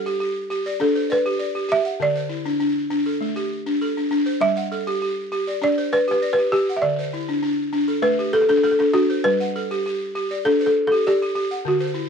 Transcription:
Already playing: G4 A4 F#5
0.06 G4
0.20 G4
0.50 G4
0.66 D5
0.80 D4 A4
0.96 C5
1.10 B4 D5
1.26 G4
1.39 D5
1.55 G4
1.69 G4 E5
1.85 F#5
2.00 D3 D5
2.16 C5
2.29 E4
2.45 D4
2.60 D4
2.90 D4
3.06 A4
3.21 A3
3.36 G4
3.66 D4
3.82 A4
3.97 D4
4.11 D4
4.26 C5
4.41 G3 E5
4.57 F#5
4.72 A4
4.87 G4
5.02 G4
5.32 G4
5.47 D5
5.62 D4 D5
5.78 C5
5.92 B4 D5
6.08 G4 B4
6.22 D5
6.33 B4
6.38 G4
6.52 G4
6.69 F#5
6.76 E5
6.82 D3 D5
6.99 C5
7.13 E4
7.29 D4
7.43 D4
7.73 D4
7.88 A4
8.02 A3 B4
8.19 G4
8.33 A4
8.41 A4
8.49 D4 A4
8.57 A4
8.63 A4
8.71 A4
8.79 D4 A4
8.93 D4 F#4
9.10 C5
9.24 G3 B4
9.40 F#5
9.56 A4
9.71 G4
9.86 G4
10.15 G4
10.31 D5
10.45 D4 A4
10.61 C5
10.66 A4
10.87 A4
10.92 G4
11.07 G4 D5
11.22 G4
11.35 G4
11.51 F#5
11.65 D3 F#4
11.80 C5
11.94 E4

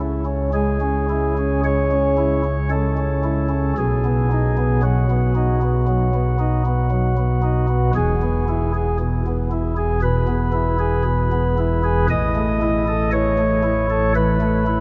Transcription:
Already playing: C#2 C#3
0.00 E4
0.25 C#4
0.53 G#3 G#4
0.81 C#4
1.09 E4
1.38 C#4
1.64 G#3 C#5
1.91 C#4
2.17 E4
2.44 C#4
2.70 G#3 A4
2.97 C#4
3.24 E4
3.49 C#4
3.78 B1 B2 G#4
4.05 B3
4.32 D#4
4.57 B3
4.83 F#3 F#4
5.10 B3
5.36 D#4
5.62 B3
5.88 F#3
6.14 B3
6.39 D#4
6.66 B3
6.91 F#3
7.17 B3
7.42 D#4
7.68 B3
7.95 E1 E2 G#4
8.22 B3
8.48 E4
8.74 G#4
9.00 B2
9.26 B3
9.52 E4
9.77 G#4
10.02 B2 B4
10.27 B3
10.52 E4
10.79 G#4
11.05 B2
11.32 B3
11.58 E4
11.84 G#4
12.09 A1 A2 D#5
12.36 A3
12.62 E4
12.88 A4
13.12 E3 C#5
13.39 A3
13.63 E4
13.90 A4
14.16 E3 B4
14.41 A3
14.67 E4

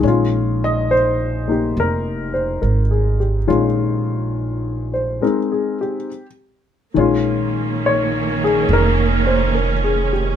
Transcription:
Already playing: D#3 G#4
0.00 A#1 G#3 C#4
0.07 F4
0.64 D#5
0.91 C5
1.48 A#3 D#4 G4
1.77 F1 A#4
2.34 C5
2.62 G#1 A#4
2.91 G#4
3.20 G4
3.47 A#1 D#3 G#3 C#4 F4
4.94 C5
5.21 G#3 C4 D#4 A#4
5.52 G#4
5.81 G4
6.94 A#1 D#3 G#3 A#3 C#4
6.99 F4
7.86 C#5
8.44 G#4
8.69 F1
8.73 A#4
9.27 C5
9.55 A#4
9.84 G#4
10.13 G4

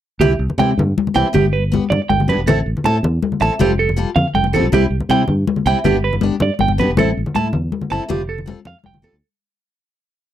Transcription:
0.20 C2 E3 E4 G4, muted steel-string acoustic guitar stroke, high conga, low conga
0.39 C2
0.50 low conga
0.58 C3 E3 C4 E4 G4 G5, high conga, low conga
0.78 G2, low conga
0.98 high conga, low conga
1.07 low conga
1.14 C2 E3 C4 E4 G4 G5
1.33 G1 B3 G4, muted steel-string acoustic guitar stroke, high conga, low conga
1.53 B4
1.72 B3 G4, high conga
1.90 G2 D5, low conga
2.09 G1 G5, high conga
2.20 low conga
2.28 G2 B3 D4 G4 B4
2.37 E1
2.46 A1 C4 E4 A4, high conga, low conga
2.66 A1
2.77 low conga
2.84 A2 C4 E4 A4 A5, high conga, low conga
3.03 E2, low conga
3.23 high conga, low conga
3.32 low conga
3.40 A1 C4 E4 A4 A5
3.59 F1 G3 C4 F4 G4 A4, high conga, low conga
3.79 A4
3.89 low conga
3.96 G3 F4 A4, muted steel-string acoustic guitar stroke
4.16 F2 F5, low conga
4.34 F1 G5, high conga
4.44 low conga
4.53 F2 G3 C4 F4 A4
4.63 B1
4.72 C2 G3 C4 E4 G4, high conga, low conga
4.90 C2
5.00 low conga
5.09 C3 G3 C4 E4 G5, high conga, low conga
5.28 G2, low conga
5.47 high conga, low conga
5.56 low conga
5.66 C2 G3 C4 E4 G4 G5
5.84 G1 B3 D4 G4, high conga, low conga
6.04 B4
6.13 low conga
6.21 B3 D4 G4, high conga
6.40 G2 D5, low conga
6.59 G1 G5, high conga
6.68 low conga
6.78 G2 B3 D4 G4 B4
6.88 E1
6.97 A1 C4 E4 A4, high conga, low conga
7.08 low conga
7.17 A1
7.26 low conga
7.35 A2 E4 A4 A5, muted steel-string acoustic guitar stroke, high conga, low conga
7.45 low conga
7.53 E2, low conga
7.72 high conga
7.81 low conga
7.90 F#1 C4 E4 A4 A5
8.01 low conga
8.09 F1 G3 C4 F4 G4, muted steel-string acoustic guitar stroke, high conga, low conga
8.29 A4
8.38 low conga
8.46 G3 C4 F4 A4, high conga
8.57 low conga
8.65 F2 F5, low conga
8.75 low conga
8.84 F1 G5, high conga
8.94 low conga
9.02 F2 G3 C4 F4 A4, low conga
9.13 D2

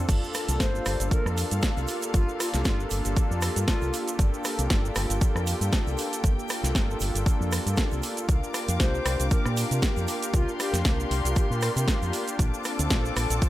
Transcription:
0.08 G1 A#3 D4 F4 G4 A4 F5, kick, closed hi-hat, crash, shaker
0.24 shaker
0.34 cross-stick, open hi-hat, shaker
0.48 C2, closed hi-hat, shaker
0.60 C5, kick, snare, closed hi-hat, shaker
0.75 shaker
0.86 G1 A#3 D4 F4 A4, cross-stick, open hi-hat, shaker
1.00 G1, closed hi-hat, shaker
1.11 A#4, kick, closed hi-hat, shaker
1.25 F2, cross-stick, shaker
1.36 A#3 D4 F4 A4, open hi-hat, shaker
1.50 G2, closed hi-hat, shaker
1.52 shaker
1.62 kick, snare, closed hi-hat, shaker
1.64 shaker
1.77 C2, shaker
1.88 open hi-hat, shaker
2.01 closed hi-hat, shaker
2.03 shaker
2.14 G1 A#3 D4 F4 A4, kick, closed hi-hat, shaker
2.29 shaker
2.40 F4, cross-stick, open hi-hat, shaker
2.53 C2 F4, snare, closed hi-hat, shaker
2.65 F4, kick, snare, closed hi-hat, shaker
2.66 shaker
2.80 shaker
2.90 G1 A#3 D4 F4 A4, open hi-hat, shaker
3.04 G1, closed hi-hat, shaker
3.16 kick, closed hi-hat, shaker
3.31 F2, shaker
3.41 A#3 D4 F4 A4, cross-stick, open hi-hat, shaker
3.56 G2 F4, closed hi-hat, shaker
3.68 kick, snare, closed hi-hat, shaker
3.81 C2, shaker
3.83 shaker
3.94 open hi-hat, shaker
4.08 closed hi-hat, shaker
4.18 G1 A#3 D4 F4 A4 G5, kick, closed hi-hat, shaker
4.34 shaker
4.44 cross-stick, open hi-hat, shaker
4.58 C2, closed hi-hat, shaker
4.70 G1, kick, snare, closed hi-hat, shaker
4.85 shaker
4.95 G1 A#3 D4 F4 A4, cross-stick, open hi-hat, shaker
5.10 G1, closed hi-hat, shaker
5.21 kick, closed hi-hat, shaker
5.35 F2, cross-stick, shaker
5.46 A#3 D4 F4 A4, open hi-hat, shaker
5.61 G2, closed hi-hat, shaker
5.72 kick, snare, closed hi-hat, shaker
5.87 C2, shaker
5.98 open hi-hat, shaker
6.13 closed hi-hat, shaker
6.23 G1 A#3 D4 F4 A4, kick, closed hi-hat, shaker
6.39 shaker
6.49 cross-stick, open hi-hat, shaker
6.63 C2, snare, closed hi-hat, shaker
6.65 shaker
6.75 G1, kick, snare, closed hi-hat, shaker
6.91 shaker
7.00 G1 A#3 D4 F4 A4, open hi-hat, shaker
7.14 G1, closed hi-hat, shaker
7.16 shaker
7.26 kick, closed hi-hat, shaker
7.28 shaker
7.40 F2, shaker
7.51 A#3 D4 F4 A4, cross-stick, open hi-hat, shaker
7.66 G2, closed hi-hat, shaker
7.76 kick, snare, closed hi-hat, shaker
7.79 shaker
7.91 C2, shaker
7.93 shaker
8.03 open hi-hat, shaker
8.17 closed hi-hat, shaker
8.29 C2 A#3 D4 F4 G4 A#4 F5 D6, kick, closed hi-hat, shaker
8.44 shaker
8.54 cross-stick, open hi-hat, shaker
8.68 F2, closed hi-hat, shaker
8.80 C5, kick, snare, closed hi-hat, shaker
8.95 shaker
9.05 C2 A#3 D4 F4 G4, cross-stick, open hi-hat, shaker
9.19 C2, closed hi-hat, shaker
9.31 A#4, kick, closed hi-hat, shaker
9.45 A#2, cross-stick, shaker
9.56 A#3 D4 F4 G4, open hi-hat, shaker
9.71 C3, closed hi-hat, shaker
9.82 kick, snare, closed hi-hat, shaker
9.84 shaker
9.96 F2, shaker
9.98 shaker
10.08 open hi-hat, shaker
10.22 closed hi-hat, shaker
10.33 C2 A#3 D4 F4 G4 C6, kick, closed hi-hat, shaker
10.49 shaker
10.60 G4, cross-stick, open hi-hat, shaker
10.73 F2, snare, closed hi-hat, shaker
10.85 C2, kick, snare, closed hi-hat, shaker
11.00 shaker
11.10 C2 A#3 D4 F4 G4, open hi-hat, shaker
11.25 C2 G4, closed hi-hat, shaker
11.36 G4, kick, closed hi-hat, shaker
11.38 shaker
11.50 A#2, shaker
11.61 A#3 D4 F4 G4 A#4, cross-stick, open hi-hat, shaker
11.75 C3 A#4, closed hi-hat, shaker
11.77 shaker
11.88 kick, snare, closed hi-hat, shaker
12.02 F2, shaker
12.13 open hi-hat, shaker
12.27 closed hi-hat, shaker
12.38 A#1 A#3 C4 D4 F4 A4 A5 D6, kick, closed hi-hat, shaker
12.54 shaker
12.64 cross-stick, open hi-hat, shaker
12.78 D2, closed hi-hat, shaker
12.90 A#1, kick, snare, closed hi-hat, shaker
12.91 shaker
13.05 shaker
13.16 A#1 C4 D4 F4 A4, cross-stick, open hi-hat, shaker
13.29 A#1, closed hi-hat, shaker
13.31 shaker
13.42 kick, closed hi-hat, shaker

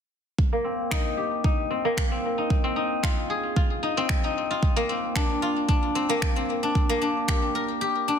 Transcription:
0.39 kick
0.53 A#3
0.64 C4
0.91 D#4, finger snap, kick
1.17 G4
1.44 D#4, kick
1.71 C4
1.85 A#3
1.97 finger snap, kick
2.12 C4
2.38 D#4
2.50 kick
2.64 C4
2.76 D#4
3.03 F4, finger snap, kick
3.30 G#4
3.56 F4, kick
3.83 D#4
3.97 C4
4.09 finger snap, kick
4.24 D#4
4.51 F4
4.63 kick
4.76 A#3
4.89 C4
5.16 D4, finger snap, kick
5.42 F4
5.68 D4, kick
5.95 C4
6.09 A#3
6.22 finger snap, kick
6.36 C4
6.63 D4
6.75 kick
6.89 A#3
7.01 D4
7.28 G4, finger snap, kick
7.55 A#4
7.81 G4
8.08 D4

